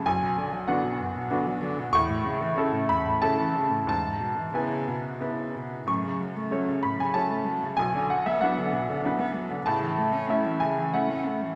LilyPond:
<<
  \new Staff \with { instrumentName = "Upright piano" } { \time 3/4 \key a \major \tempo 4 = 94 << { gis''4 fis''2 | cis'''4. b''8 a''4 | a''4 gis''4 r4 | cis'''4. b''16 gis''16 a''4 |
gis''8 fis''16 e''16 fis''2 | a''4. gis''8 fis''4 | } \\ { b,,4 <b d' fis'>4 <b d' fis'>4 | a,4 <cis' e' a'>4 <cis' e' a'>4 | gis,4 <b e' b'>4 <b e' b'>4 | fis,4 <a cis' cis''>4 <a cis' cis''>4 |
b,,4 <b d' b'>4 <b d' b'>4 | a,4 <cis' e' e''>4 <cis' e' e''>4 | } >> }
  \new Staff \with { instrumentName = "Cello" } { \clef bass \time 3/4 \key a \major fis,16 b,16 d16 fis16 d16 b,16 fis,16 b,16 d16 fis16 d16 b,16 | e,16 a,16 cis16 e16 cis16 a,16 e,16 a,16 cis16 e16 cis16 a,16 | e,16 gis,16 b,16 e16 cis8 b,8 cis8 b,8 | a,16 cis16 fis16 a16 fis16 cis16 a,16 cis16 fis16 a16 fis16 cis16 |
b,16 d16 fis16 b16 fis16 d16 b,16 d16 fis16 b16 fis16 d16 | cis16 e16 a16 cis'16 a16 e16 cis16 e16 a16 cis'16 a16 e16 | }
>>